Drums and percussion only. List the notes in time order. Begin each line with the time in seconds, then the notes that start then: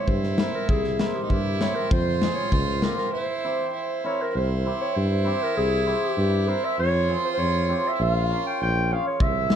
0.08 kick
0.23 snare
0.38 snare
0.69 kick
0.84 snare
0.99 snare
1.30 kick
1.61 snare
1.91 kick
2.22 snare
2.52 kick
2.82 snare
2.98 snare
9.20 kick
9.50 snare